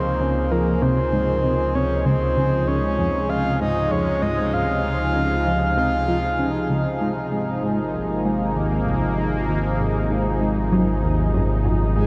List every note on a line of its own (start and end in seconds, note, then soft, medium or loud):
0.00 0.14 C#2 medium
0.00 6.98 C#2 medium
0.00 12.07 C3 medium
0.00 12.07 F3 medium
0.00 2.75 A#3 medium
0.00 12.07 D#4 medium
0.00 12.07 G#4 medium
0.00 0.53 C5 loud
0.21 0.37 C#3 medium
0.51 0.76 F3 medium
0.51 0.84 A#4 medium
0.82 0.99 C3 loud
0.82 1.77 C5 loud
1.13 1.38 G#2 medium
1.44 1.54 C3 medium
1.75 1.85 C3 medium
1.75 2.05 C#5 loud
2.06 2.16 C#2 medium
2.06 2.69 C5 loud
2.37 2.62 C#2 medium
2.56 7.01 G#3 medium
2.67 2.85 C#3 medium
2.67 3.31 C#5 loud
2.99 3.09 F2 medium
3.29 3.54 C#3 medium
3.29 3.59 F5 loud
3.60 3.86 G#2 medium
3.60 3.93 D#5 loud
3.91 4.08 F2 medium
3.91 4.23 C#5 loud
4.22 4.39 G#2 medium
4.22 4.55 D#5 loud
4.53 4.63 G#2 medium
4.53 5.77 F5 loud
4.84 5.09 C#2 medium
5.15 5.32 C#3 medium
5.47 5.71 F3 medium
5.77 5.94 C3 loud
5.77 6.66 F5 loud
6.08 6.18 F3 medium
6.39 6.49 C#3 medium
6.70 6.87 C#2 medium
7.01 12.07 G#1 medium
7.01 7.11 G#2 medium
7.32 7.57 G#2 medium
7.55 12.07 A#3 medium
7.63 7.79 G#2 medium
7.94 8.04 C2 medium
8.25 8.50 G#2 medium
8.56 8.81 D#2 medium
8.87 9.03 C2 medium
9.18 9.34 D#2 medium
9.49 9.58 D#2 medium
9.80 10.04 G#2 medium
10.10 10.27 G#2 medium
10.41 10.58 G#2 medium
10.72 10.89 F#2 loud
11.03 11.28 D#2 medium
11.34 11.44 F#2 medium
11.65 11.75 F#2 medium
11.96 12.06 G#2 medium
11.96 12.07 G#4 loud